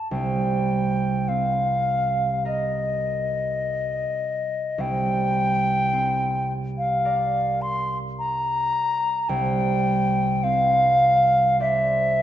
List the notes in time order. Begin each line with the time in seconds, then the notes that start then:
Already playing: A5
0.11 C2 G5
1.28 C4 F5
2.45 A#4 D#5
4.78 C2 G5
5.93 C4
6.78 F5
7.05 A#4 D5
7.62 C6
8.19 A#5
9.29 C2 G5
10.43 C4 F5
11.60 C5 D5 E5